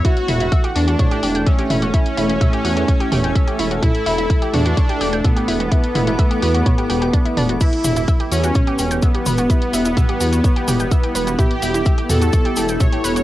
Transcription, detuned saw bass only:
\new Staff \with { instrumentName = "Detuned saw bass" } { \clef bass \time 4/4 \key a \mixolydian \tempo 4 = 127 r8 e,,8 r8 e,8 r8 e,,8 r8 e,,8 | r8 e,,8 r8 e,8 r8 e,,8 r8 e,,8 | r8 e,,8 r8 e,8 r8 e,,8 r8 e,,8 | r8 e,,8 r8 e,8 r8 e,,8 r8 e,,8 |
r8 e,,8 r8 e,8 r8 e,,8 r8 e,,8 | r8 e,,8 r8 e,8 r8 e,,8 r8 e,,8 | r8 e,,8 r8 e,8 r8 e,,8 r8 e,,8 | }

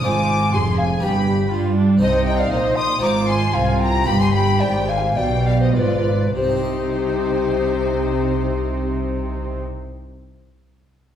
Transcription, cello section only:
\new Staff \with { instrumentName = "Cello section" } { \clef bass \time 4/4 \key c \minor \tempo 4 = 106 aes,4 f,4 g,4 g4 | c4 bes,4 aes,4 c4 | g,4 aes,4 b,4 aes,4 | c1~ |
c1 | }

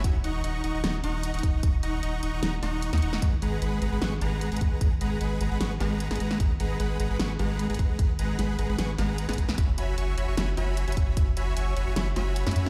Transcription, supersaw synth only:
\new Staff \with { instrumentName = "Supersaw synth" } { \time 4/4 \key gis \minor \tempo 4 = 151 <dis' dis'' fis'' ais''>16 r16 <dis' dis'' fis'' ais'' cis'''>8 <dis' dis'' fis'' ais'' cis'''>8 <dis' dis'' fis'' ais'' cis'''>16 <dis' dis'' fis'' ais'' cis'''>16 <dis' dis'' fis'' ais'' cis'''>16 r16 <dis' dis'' fis'' ais'' cis'''>8. <dis' dis'' fis'' ais'' cis'''>16 <dis' dis'' fis'' ais'' cis'''>8 | <dis' dis'' fis'' ais'' cis'''>16 r16 <dis' dis'' fis'' ais'' cis'''>8 <dis' dis'' fis'' ais'' cis'''>8 <dis' dis'' fis'' ais'' cis'''>16 <dis' dis'' fis'' ais'' cis'''>16 <dis' dis'' fis'' ais'' cis'''>16 r16 <dis' dis'' fis'' ais'' cis'''>8. <dis' dis'' fis'' ais'' cis'''>16 <dis' dis'' fis'' ais'' cis'''>8 | <gis gis' b'>16 r16 <gis gis' b' fis'' ais''>8 <gis gis' b' fis'' b''>8 <gis gis' b' fis'' ais''>16 <gis gis' b' fis'' b''>16 <gis gis' b' fis'' cis'''>16 r16 <gis gis' b' fis'' ais''>8. <gis gis' b' fis'' ais''>16 <gis gis' b' fis'' ais''>8 | <gis gis' b' fis'' ais''>16 r16 <gis gis' b' fis'' ais''>8 <gis gis' b' fis'' b''>8 <gis gis' b' fis'' ais''>16 <gis gis' b' fis'' b''>16 <gis gis' b' fis'' cis'''>16 r16 <gis gis' b' fis'' ais''>8. <gis gis' b' fis'' ais''>16 <gis gis' b' fis'' ais''>8 |
<gis gis' ais''>16 r16 <gis gis' b' fis'' ais''>8 <gis gis' b' fis'' b''>8 <gis gis' b' fis'' ais''>16 <gis gis' b' fis'' b''>16 <gis gis' b' fis'' cis'''>16 r16 <gis gis' b' fis'' ais''>8. <gis gis' b' fis'' ais''>16 <gis gis' b' fis'' ais''>8 | <gis gis' b' fis'' ais''>16 r16 <gis gis' b' fis'' ais''>8 <gis gis' b' fis'' b''>8 <gis gis' b' fis'' ais''>16 <gis gis' b' fis'' b''>16 <gis gis' b' fis'' cis'''>16 r16 <gis gis' b' fis'' ais''>8. <gis gis' b' fis'' ais''>16 <gis gis' b' fis'' ais''>8 | <fis' cis'' e'' gis'' b''>16 r16 <fis' cis'' e'' gis'' b''>8 <fis' cis'' e'' gis'' cis'''>8 <fis' cis'' e'' gis'' b''>16 <fis' cis'' e'' gis'' cis'''>16 <fis' cis'' e'' gis'' b''>16 r16 <fis' cis'' e'' gis'' b''>8. <fis' cis'' e'' gis'' b''>16 <fis' e'' gis''>8 | <fis' cis'' e'' gis'' b''>16 r16 <fis' cis'' e'' gis'' b''>8 <fis' cis'' e'' gis'' cis'''>8 <fis' cis'' e'' gis'' b''>16 <fis' cis'' e'' gis'' cis'''>16 <fis' cis'' e'' gis'' b''>16 r16 <fis' cis'' e'' gis'' b''>8. <fis' cis'' e'' gis'' b''>16 <fis' cis'' e'' gis'' b''>8 | }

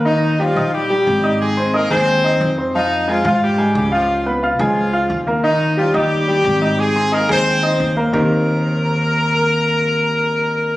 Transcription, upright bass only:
\new Staff \with { instrumentName = "Upright bass" } { \clef bass \time 4/4 \key ees \major \tempo 4 = 178 ees,4. bes,,4. aes,,4~ | aes,,4. ees,4. f,4~ | f,4. aes,4. des,4~ | des,4. des,4. ees,4~ |
ees,4. ees,4. aes,,4~ | aes,,4. ees,4. ees,4 | ees,1~ | ees,1 | }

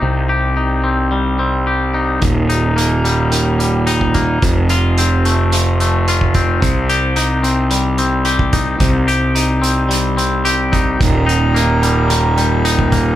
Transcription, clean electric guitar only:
\new Staff \with { instrumentName = "Clean electric guitar" } { \time 4/4 \key c \dorian \tempo 4 = 109 <c g c' ees' g'>8 g'8 ees'8 c'8 g8 c'8 g'8 ees'8 | ees,8 ees'8 bes8 g8 ees8 g8 ees'8 bes8 | f,8 f'8 c'8 a8 f8 a8 f'8 c'8 | c8 g'8 ees'8 c'8 g8 c'8 g'8 ees'8 |
c8 g'8 ees'8 c'8 g8 c'8 g'8 ees'8 | ees,8 ees'8 bes8 g8 ees8 g8 ees'8 bes8 | }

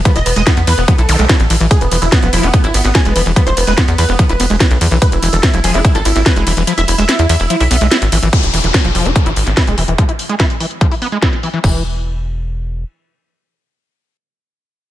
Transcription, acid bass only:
\new Staff \with { instrumentName = "Acid bass" } { \clef bass \time 4/4 \key e \major \tempo 4 = 145 f16 e'16 r16 gis16 e'16 r16 e16 r16 f16 e'16 dis16 gis16 e'16 r16 e16 e16 | r8 e16 e16 r16 f16 f16 e'16 r16 e'16 r8 e'16 gis16 e16 e16 | f16 e'16 r16 gis16 e'16 r16 e16 r16 f16 e'16 b16 gis16 e'16 r16 e16 e16 | r8 e16 e16 r16 f16 f16 e'16 r16 e'16 r8 e'16 gis16 e16 e16 |
f16 e'16 r16 gis16 e'16 r16 e16 r16 f16 e'16 b16 gis16 e'16 r16 e16 e16 | r8 e16 e16 r16 f16 f16 e'16 r16 e'16 r8 e'16 gis16 e16 e16 | f16 e'16 r16 gis16 e'16 r16 e16 r16 f16 e'16 b16 gis16 e'16 r16 e16 e16 | e8 r2. r8 |
r1 | }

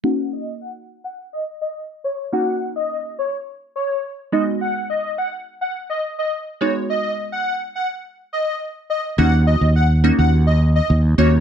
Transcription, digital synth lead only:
\new Staff \with { instrumentName = "Digital synth lead" } { \time 4/4 \key ees \minor \tempo 4 = 105 ges''8 ees''8 ges''16 r8 ges''16 r16 ees''16 r16 ees''16 r8 des''16 r16 | ges''8 r16 ees''8 r16 des''16 r8. des''8 r8 dis''16 r16 | fis''8 dis''8 fis''16 r8 fis''16 r16 dis''16 r16 dis''16 r8 des''16 r16 | dis''8 r16 fis''8 r16 fis''16 r8. dis''8 r8 dis''16 r16 |
ges''8 ees''8 ges''16 r8 ges''16 r16 ees''16 r16 ees''16 r8 des''16 r16 | }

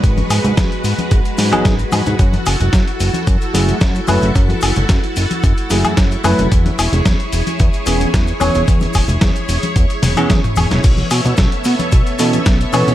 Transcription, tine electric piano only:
\new Staff \with { instrumentName = "Tine electric piano" } { \time 4/4 \key fis \minor \tempo 4 = 111 r2 r8. <fis b dis' gis'>8 r8. | r2 r8 <fis a e' gis'>8 r8 <fis a e' b'>8 | r2 r8 <fis a e' gis'>8 r8 <fis a e' b'>8 | r2 r8 <e b cis' gis'>8 r8 <e b cis' cis''>8 |
r2 r8. <e b cis' gis'>8 r8. | r2 r8 <e b cis' a'>8 r8 <e b cis' cis''>8 | }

